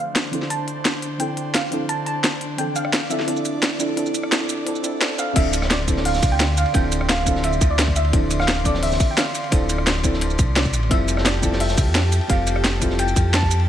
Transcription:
Already playing: analog synth pad D3 D4 C5, synth stab E3 F3 C4 D4 A4
0.00 synth pluck F5
0.16 snare, closed hi-hat
0.31 synth stab F3 C4 D4 E4 A4, closed hi-hat
0.42 snare
0.50 synth pluck A5, closed hi-hat
0.68 closed hi-hat
0.85 snare, closed hi-hat
1.02 closed hi-hat
1.18 synth stab F3 C4 D4 E4 A4, synth pluck G5, closed hi-hat
1.37 closed hi-hat
1.54 synth pluck F5, snare, closed hi-hat
1.70 synth stab F3 C4 D4 E4 A4, closed hi-hat
1.89 synth pluck A5, closed hi-hat
2.06 synth pluck A5, closed hi-hat
2.24 snare, closed hi-hat
2.41 closed hi-hat
2.57 synth stab E3 F3 C4 D4 A4, analog synth pad D5, synth pluck G5, closed hi-hat
2.76 synth pluck F5, closed hi-hat, shaker
2.85 cross-stick
2.93 snare, closed hi-hat
3.09 synth stab F3 C4 D4 E4 A4, synth pluck E5, closed hi-hat, shaker
3.19 snare
3.26 synth stab F3 C4 D4 E4 A4, closed hi-hat
3.37 shaker
3.45 closed hi-hat, shaker
3.62 snare, closed hi-hat
3.78 synth stab F3 C4 D4 E4 A4, closed hi-hat, shaker
3.95 synth stab F3 C4 D4 E4 A4, closed hi-hat
4.06 shaker
4.14 closed hi-hat, shaker
4.23 cross-stick
4.30 synth stab F3 C4 D4 E4 A4, snare, closed hi-hat
4.49 closed hi-hat, shaker
4.65 synth stab F3 C4 D4 E4 A4, closed hi-hat
4.75 shaker
4.82 synth stab F3 C4 D4 E4 A4, closed hi-hat, shaker
4.99 synth stab F3 C4 D4 E4 A4, snare, closed hi-hat
5.17 synth stab F3 C4 D4 E4 A4, synth pluck F5, closed hi-hat, shaker
5.34 sub bass D1, analog synth pad D3 D5 C6, synth stab F3 C4 D4 E4 A4, synth pluck E5, kick, closed hi-hat, crash, ride
5.53 closed hi-hat, ride, shaker
5.62 cross-stick, snare
5.70 synth pluck D5, snare, closed hi-hat, ride
5.86 synth stab F3 C4 D4 E4 A4, kick, closed hi-hat, ride, shaker
5.96 snare
6.05 synth pluck F5, closed hi-hat, open hi-hat
6.14 snare, shaker
6.23 sub bass C2, kick, closed hi-hat, ride, shaker
6.32 sub bass D2, synth pluck G5
6.39 snare, closed hi-hat, ride
6.57 synth pluck F5, closed hi-hat, ride, shaker
6.66 ride
6.73 sub bass D1, synth stab F3 C4 D4 E4 A4, synth pluck G5, kick, closed hi-hat, ride
6.92 closed hi-hat, ride, shaker
7.01 cross-stick
7.09 synth pluck F5, snare, closed hi-hat, ride
7.25 synth stab F3 C4 D4 E4 A4, kick, closed hi-hat, ride, shaker
7.36 snare
7.43 synth pluck E5, closed hi-hat, ride
7.53 shaker
7.61 sub bass D2, kick, closed hi-hat, ride, shaker
7.70 synth pluck D5
7.78 snare, closed hi-hat, ride
7.88 kick
7.96 synth pluck E5, closed hi-hat, ride, shaker
8.05 ride
8.12 sub bass D1, synth stab F3 C4 D4 E4 A4, kick, closed hi-hat, ride
8.31 closed hi-hat, ride, shaker
8.40 synth pluck F5, cross-stick, snare
8.48 snare, closed hi-hat, ride
8.64 synth stab E3 F3 C4 D4 A4, synth pluck D5, kick, closed hi-hat, ride, shaker
8.74 snare
8.83 synth pluck E5, closed hi-hat, open hi-hat
8.92 snare, shaker
9.00 kick, closed hi-hat, ride, shaker
9.11 synth pluck G5
9.17 synth pluck F5, snare, closed hi-hat, ride
9.35 closed hi-hat, ride, shaker
9.44 ride
9.50 sub bass D1, synth stab F3 C4 D4 E4 A4, kick, closed hi-hat, ride
9.69 closed hi-hat, ride, shaker
9.78 cross-stick
9.87 snare, closed hi-hat, ride
10.02 synth stab F3 C4 D4 E4 A4, kick, closed hi-hat, ride, shaker
10.13 snare
10.21 closed hi-hat, ride
10.30 shaker
10.38 sub bass C2, kick, closed hi-hat, ride, shaker
10.56 synth pluck D5, snare, closed hi-hat, ride
10.65 kick, shaker
10.73 sub bass A1, closed hi-hat, ride, shaker
10.83 ride
10.89 sub bass F1, synth stab G3 C4 E4 F4 A4, analog synth pad G4 G5 A5, synth pluck E5, kick, closed hi-hat, ride
11.08 closed hi-hat, ride, shaker
11.17 cross-stick, snare
11.25 synth pluck D5, snare, closed hi-hat, ride
11.41 synth stab G3 C4 E4 F4 A4, kick, closed hi-hat, ride, shaker
11.53 snare
11.60 synth pluck E5, closed hi-hat, open hi-hat
11.69 snare, shaker
11.78 sub bass C2, kick, closed hi-hat, ride, shaker
11.87 sub bass F2
11.95 snare, closed hi-hat, ride
12.12 closed hi-hat, ride, shaker
12.21 ride
12.28 sub bass F1, synth stab G3 C4 F4 G4 A4, synth pluck F5, kick, closed hi-hat, ride
12.47 closed hi-hat, ride, shaker
12.56 cross-stick
12.64 snare, closed hi-hat, ride
12.80 synth stab G3 C4 E4 F4 A4, kick, closed hi-hat, ride, shaker
12.90 snare
12.99 synth pluck G5, closed hi-hat, ride
13.08 shaker
13.16 sub bass F2, kick, closed hi-hat, ride, shaker
13.33 synth pluck A5, snare, closed hi-hat, ride
13.43 kick
13.51 closed hi-hat, ride, shaker
13.60 ride

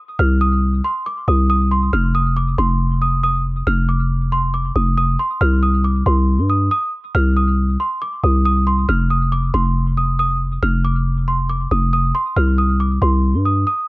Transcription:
0.19 808-style bass C2, celesta F6
0.41 celesta D#6
0.84 celesta C6
1.06 celesta D6
1.28 808-style bass C2, celesta D#6
1.50 celesta D#6
1.71 celesta C6
1.93 808-style bass F1, celesta F6
2.15 celesta D#6
2.37 celesta D6
2.58 808-style bass F1, celesta C6
3.02 celesta D#6
3.24 celesta D#6
3.67 808-style bass F1, celesta F6
3.89 celesta D6
4.32 celesta C6
4.54 celesta D6
4.76 808-style bass F1, celesta D#6
4.98 celesta D#6
5.19 celesta C6
5.41 808-style bass C2, celesta F6
5.63 celesta D#6
5.84 celesta D6
6.06 808-style bass C2, celesta C6
6.39 808-style bass G2
6.50 celesta D#6
6.71 celesta D#6
7.15 808-style bass C2, celesta F6
7.37 celesta D#6
7.80 celesta C6
8.02 celesta D6
8.24 808-style bass C2, celesta D#6
8.45 celesta D#6
8.67 celesta C6
8.89 808-style bass F1, celesta F6
9.10 celesta D#6
9.32 celesta D6
9.54 808-style bass F1, celesta C6
9.97 celesta D#6
10.19 celesta D#6
10.63 808-style bass F1, celesta F6
10.85 celesta D6
11.28 celesta C6
11.50 celesta D6
11.71 808-style bass F1, celesta D#6
11.93 celesta D#6
12.15 celesta C6
12.36 808-style bass C2, celesta F6
12.58 celesta D#6
12.80 celesta D6
13.02 808-style bass C2, celesta C6
13.34 808-style bass G2
13.45 celesta D#6
13.67 celesta D#6

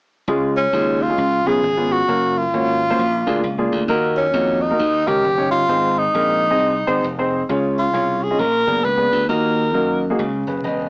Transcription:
0.28 slap bass C#2, grand piano C#3 G#3 C#4 F4 G#4
0.57 tenor saxophone C#4
0.73 slap bass D#2, grand piano G#3 C#4 F4 G#4
1.02 tenor saxophone F4
1.10 grand piano G#3 C#4 F4 G#4
1.18 slap bass C#2, grand piano C#3
1.46 slap bass B1, grand piano B3 C#4 F4 G#4, tenor saxophone G#4
1.63 slap bass G#1
1.77 grand piano B3 C#4 F4 G#4
1.92 tenor saxophone F#4
2.08 slap bass F#1, grand piano A#3 C#4 F#4 A#4
2.38 tenor saxophone F4
2.53 slap bass G#1, grand piano A#3 C#4 F#4 C#5
2.90 grand piano A#3 C#4 F#4 C5
2.99 slap bass A#1, grand piano A#2
3.26 slap bass D2, grand piano A#3 D4 F4 G#4
3.43 slap bass C#2
3.58 grand piano A#3 D4 F4 G#4
3.72 slap bass D2
3.88 slap bass D#2, grand piano D#3 A#3 D#4 F#4 A#4
4.17 tenor saxophone C#4
4.33 slap bass F2, grand piano A#3 D#4 F#4 C#5
4.62 tenor saxophone D#4
4.70 grand piano A#3 D#4 F#4 A#4
4.78 slap bass D#2, grand piano D#3
5.07 slap bass C#2, grand piano C#4 D#4 G4 A#4, tenor saxophone G4
5.24 slap bass F#1
5.38 grand piano C#4 D#4 G4 C#5
5.51 slap bass G1, tenor saxophone F4
5.69 slap bass G#1, grand piano G#2 C4 D#4 G#4 C5
5.98 tenor saxophone D#4
6.14 slap bass A#1, grand piano C4 D#4 G#4 A#4
6.50 grand piano C4 D#4 G#4 D#5
6.59 slap bass C2
6.87 slap bass G#1, grand piano C4 D#4 G#4 C5
7.04 slap bass F1
7.18 grand piano C4 D#4 G#4 C5
7.49 slap bass C#2, grand piano C#3 C#4 F4 G#4 C#5
7.79 tenor saxophone F4
7.93 slap bass C2, grand piano C#4 F4 G#4 C#5
8.23 tenor saxophone G#4
8.31 grand piano C#4 F4 G#4 D#5
8.38 slap bass A#1, grand piano A#2, tenor saxophone A#4
8.66 slap bass F#1, grand piano B3 D4 G#4 A#4
8.84 slap bass C#2, tenor saxophone B4
8.97 grand piano B3 D4 G#4 B4
9.12 slap bass D2
9.29 slap bass D#2, grand piano D#3 A#3 D#4 F#4 A#4, tenor saxophone A#4
9.74 slap bass F#2, grand piano A#3 D#4 F#4 A#4
10.10 grand piano A#3 D#4 F#4 G#4
10.19 slap bass C#2, grand piano C#3
10.47 slap bass F#1, grand piano G#4 B4
10.64 slap bass E1, grand piano B4 D#5

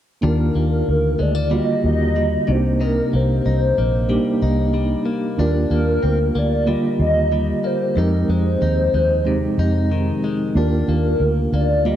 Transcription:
0.21 fingered electric bass D#2, clean electric guitar D#3 D4, reed electric piano A#3 D4 F4 G4
0.25 soft synth lead A#4
0.55 fingered electric bass D#2, clean electric guitar A#3, soft synth lead A#4
0.88 fingered electric bass D2
1.19 fingered electric bass D2, clean electric guitar G#3, soft synth lead D5
1.35 clean electric guitar A#3
1.50 reed electric piano D3 A#3 F4 F#4, clean electric guitar G3, soft synth lead D#5
1.59 reed electric piano G4
1.84 fingered electric bass D#2, soft synth lead D#5
2.16 clean electric guitar G3
2.47 fingered electric bass C2, clean electric guitar C3, reed electric piano A#3 D4 D#4 F#4, soft synth lead C5
2.56 reed electric piano G4
2.81 clean electric guitar C3 D#4, soft synth lead A#4
3.13 fingered electric bass C2, clean electric guitar A#3, soft synth lead C5
3.46 fingered electric bass C2, clean electric guitar D#4
3.78 fingered electric bass A#1, clean electric guitar A#3
4.09 clean electric guitar G3, reed electric piano A#3 D4 D#4 G4
4.42 fingered electric bass C2, clean electric guitar D#4
4.74 clean electric guitar G3
5.06 clean electric guitar A#3
5.37 fingered electric bass D#2, reed electric piano A#3 D4 F4 G4, clean electric guitar D4, soft synth lead A#4
5.70 fingered electric bass D#2, clean electric guitar A#3, soft synth lead A#4
6.03 fingered electric bass D2, clean electric guitar C4
6.35 fingered electric bass D2, clean electric guitar A#3, soft synth lead D5
6.66 reed electric piano D3 A#3 F4 G4, clean electric guitar G3, soft synth lead D#5
7.00 fingered electric bass D#2, soft synth lead D#5
7.32 clean electric guitar G3
7.64 clean electric guitar A#3, soft synth lead C5
7.95 fingered electric bass F2, clean electric guitar F2 D#4, reed electric piano G#3 C4 D#4 G4, soft synth lead A#4
8.29 fingered electric bass F2, clean electric guitar G#3, soft synth lead C5
8.62 fingered electric bass D#2, clean electric guitar D#4
8.94 fingered electric bass D#2, clean electric guitar G#3
9.25 clean electric guitar C3, reed electric piano G#3 C4 D#4 G4
9.58 fingered electric bass F2, clean electric guitar D#4
9.92 clean electric guitar D#3
10.24 clean electric guitar G#3
10.55 fingered electric bass D#2, reed electric piano A#3 D4 F4 G4, clean electric guitar D4, soft synth lead A#4
10.88 fingered electric bass D#2, clean electric guitar A#3
11.20 fingered electric bass D2
11.52 fingered electric bass D2, clean electric guitar A#3, soft synth lead D5
11.85 reed electric piano D3 A#3 F4 G4, clean electric guitar G3, soft synth lead D#5

